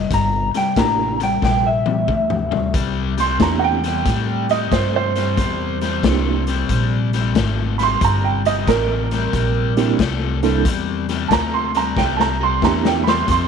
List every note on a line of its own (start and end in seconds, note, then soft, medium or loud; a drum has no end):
0.00 0.11 D#5 medium
0.11 0.51 G1 medium
0.11 0.50 C3 medium
0.11 0.50 G3 medium
0.11 0.55 A#5 medium
0.11 kick medium
0.11 snare soft
0.11 closed hi-hat medium
0.54 0.75 C3 medium
0.54 0.75 G3 medium
0.54 0.77 G5 medium
0.54 muted upright bass stroke soft
0.54 snare soft
0.54 closed hi-hat medium
0.76 1.41 A1 medium
0.76 1.16 C3 medium
0.76 1.17 A3 medium
0.76 1.16 A#3 medium
0.76 1.16 D4 medium
0.76 1.16 E4 medium
0.76 1.16 G4 medium
0.76 1.21 A#5 medium
0.76 kick medium
0.76 snare loud
0.76 closed hi-hat medium
1.20 1.40 C3 medium
1.20 1.41 G3 medium
1.20 1.43 G5 medium
1.20 snare soft
1.20 closed hi-hat medium
1.42 2.06 A#1 medium
1.42 1.82 C3 medium
1.42 1.82 G3 medium
1.42 1.65 G5 medium
1.42 kick medium
1.42 snare medium
1.67 2.72 E5 medium
1.86 2.06 C3 medium
1.86 2.06 G3 medium
1.86 high tom medium
2.08 2.72 D2 medium
2.08 2.48 C3 medium
2.08 2.48 A3 medium
2.08 kick medium
2.08 mid tom medium
2.30 mid tom medium
2.51 2.72 C3 medium
2.51 2.72 G3 medium
2.51 floor tom medium
2.74 3.38 C2 medium
2.74 3.14 C3 medium
2.74 3.14 G3 medium
2.74 kick medium
2.74 closed hi-hat loud
3.18 3.38 C3 medium
3.18 3.38 G3 medium
3.18 3.41 C6 medium
3.18 snare soft
3.18 closed hi-hat medium
3.40 4.04 E2 medium
3.40 3.80 C3 medium
3.40 3.80 A3 medium
3.40 3.79 A#3 medium
3.40 3.79 C4 soft
3.40 3.79 D4 medium
3.40 3.80 E4 medium
3.40 3.80 G4 medium
3.40 3.63 A#5 medium
3.40 kick medium
3.40 snare loud
3.40 closed hi-hat medium
3.59 3.67 F#5 medium
3.64 4.49 G5 loud
3.84 4.04 C3 medium
3.84 4.04 G3 medium
3.84 snare soft
3.84 closed hi-hat medium
4.05 4.70 A2 medium
4.05 4.46 C3 medium
4.05 4.46 G3 medium
4.05 kick medium
4.05 snare soft
4.05 closed hi-hat medium
4.49 4.70 C3 medium
4.49 4.70 G3 medium
4.49 4.72 D#5 medium
4.49 snare soft
4.49 closed hi-hat medium
4.72 5.36 G2 medium
4.72 5.12 C3 medium
4.72 5.12 A3 loud
4.72 4.94 C5 medium
4.72 kick medium
4.72 snare loud
4.72 closed hi-hat medium
4.96 6.89 C5 medium
5.16 5.36 C3 medium
5.16 5.36 G3 medium
5.16 snare soft
5.16 closed hi-hat medium
5.37 6.02 E2 medium
5.37 5.77 C3 medium
5.37 5.77 G3 medium
5.37 kick loud
5.37 snare soft
5.37 closed hi-hat medium
5.81 6.02 C3 medium
5.81 6.02 G3 medium
5.81 snare soft
5.81 closed hi-hat medium
6.03 6.68 C2 medium
6.03 6.43 C3 medium
6.03 6.43 A3 medium
6.03 6.43 A#3 medium
6.03 6.43 C4 medium
6.03 6.43 D4 medium
6.03 6.43 E4 medium
6.03 6.43 G4 medium
6.03 kick medium
6.03 snare loud
6.03 closed hi-hat medium
6.47 6.68 C3 medium
6.47 6.68 G3 medium
6.47 snare soft
6.47 closed hi-hat medium
6.69 7.33 A#1 medium
6.69 7.09 C3 medium
6.69 7.09 G3 medium
6.69 kick medium
6.69 closed hi-hat medium
7.13 7.34 C3 medium
7.13 7.34 G3 medium
7.13 snare soft
7.13 closed hi-hat medium
7.35 8.00 G#1 medium
7.35 7.75 C3 medium
7.35 7.75 A3 medium
7.35 kick medium
7.35 snare medium
7.35 closed hi-hat medium
7.78 7.99 C3 medium
7.78 8.00 G3 medium
7.78 7.83 B5 medium
7.78 snare soft
7.78 closed hi-hat medium
7.83 8.03 C6 loud
8.01 8.65 G1 medium
8.01 8.41 C3 medium
8.01 8.41 G3 medium
8.01 8.24 A#5 medium
8.01 kick loud
8.01 closed hi-hat loud
8.24 8.45 G5 medium
8.45 8.65 C3 medium
8.45 8.66 G3 medium
8.45 8.67 D#5 medium
8.45 snare soft
8.45 closed hi-hat medium
8.67 9.31 A1 medium
8.67 9.07 C3 medium
8.67 9.07 A3 medium
8.67 9.96 A#4 medium
8.67 kick medium
8.67 snare medium
8.67 closed hi-hat medium
9.11 9.31 C3 medium
9.11 9.31 G3 medium
9.11 snare soft
9.11 closed hi-hat medium
9.33 9.97 A#1 medium
9.33 9.73 C3 medium
9.33 9.73 G3 medium
9.33 kick medium
9.33 closed hi-hat medium
9.77 9.97 C3 medium
9.77 9.97 G3 medium
9.77 9.97 A#3 medium
9.77 9.97 C4 medium
9.77 9.97 D4 medium
9.77 9.97 E4 medium
9.77 9.97 G4 medium
9.77 snare soft
9.77 closed hi-hat medium
9.99 10.63 C2 medium
9.99 10.39 C3 medium
9.99 10.39 A3 medium
9.99 kick medium
9.99 snare loud
9.99 closed hi-hat medium
10.43 10.63 C3 medium
10.43 10.64 G3 medium
10.43 10.63 A#3 medium
10.43 10.63 C4 medium
10.43 10.63 D4 medium
10.43 10.63 E4 medium
10.43 10.63 A4 medium
10.43 snare soft
10.43 closed hi-hat medium
10.65 11.29 E2 medium
10.65 11.04 C3 medium
10.65 11.05 G3 medium
10.65 kick medium
10.65 closed hi-hat loud
11.09 11.29 C3 medium
11.09 11.29 G3 medium
11.09 snare soft
11.09 closed hi-hat medium
11.28 11.95 D2 medium
11.28 11.70 C3 medium
11.28 11.71 A3 medium
11.28 11.33 A5 medium
11.28 kick medium
11.28 snare medium
11.28 closed hi-hat medium
11.33 11.53 A#5 medium
11.54 11.75 C6 medium
11.75 11.95 C3 medium
11.75 11.95 G3 medium
11.75 11.97 A#5 medium
11.75 snare soft
11.75 closed hi-hat medium
11.97 12.61 C2 medium
11.97 12.36 C3 medium
11.97 12.36 G3 medium
11.97 12.19 G5 medium
11.97 kick medium
11.97 snare medium
12.17 12.24 A5 medium
12.17 snare medium
12.21 12.41 A#5 medium
12.41 12.61 C3 medium
12.41 12.61 G3 medium
12.41 12.63 C6 medium
12.62 13.26 E2 medium
12.62 13.02 C3 medium
12.62 13.02 A3 medium
12.62 13.02 A#3 medium
12.62 13.02 C4 medium
12.62 13.02 D4 medium
12.62 13.02 E4 medium
12.62 13.02 G4 medium
12.62 12.85 A#5 medium
12.62 kick medium
12.62 snare medium
12.85 13.07 G5 medium
12.85 snare medium
13.04 13.26 C3 medium
13.04 13.27 G3 medium
13.04 13.09 B5 medium
13.08 13.29 C6 medium
13.08 snare medium
13.28 13.48 F2 medium
13.28 13.48 C3 medium
13.28 13.48 C6 medium
13.28 kick medium
13.28 snare soft
13.28 closed hi-hat medium